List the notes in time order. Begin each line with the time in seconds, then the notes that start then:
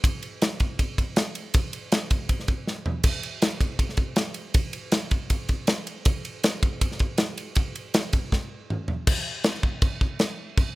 0.04 kick, ride
0.23 ride
0.42 snare, ride
0.60 kick, ride
0.79 kick, ride
0.98 kick, ride
1.16 snare, ride
1.35 ride
1.54 kick, ride
1.73 ride
1.92 snare, ride
2.11 kick, ride
2.29 kick, ride
2.40 snare
2.48 kick, ride
2.67 snare
2.86 floor tom
3.04 kick, ride, crash
3.23 ride
3.42 snare, ride
3.61 kick, ride
3.79 kick, ride
3.89 snare
3.97 kick, ride
4.16 snare, ride
4.34 ride
4.54 kick, ride
4.73 ride
4.92 snare, ride
5.11 kick, ride
5.30 kick, ride
5.49 kick, ride
5.67 snare, ride
5.87 ride
6.05 kick, ride
6.25 ride
6.44 snare, ride
6.63 kick, ride
6.81 kick, ride
6.92 snare
6.99 kick, ride
7.18 snare, ride
7.38 ride
7.55 kick, ride
7.75 ride
7.94 snare, ride
8.13 kick, ride
8.32 kick, snare
8.70 mid tom
8.88 floor tom
9.07 kick, crash
9.44 snare, crash
9.54 snare
9.63 kick
9.82 kick, crash
10.01 kick
10.19 snare, crash
10.57 kick, crash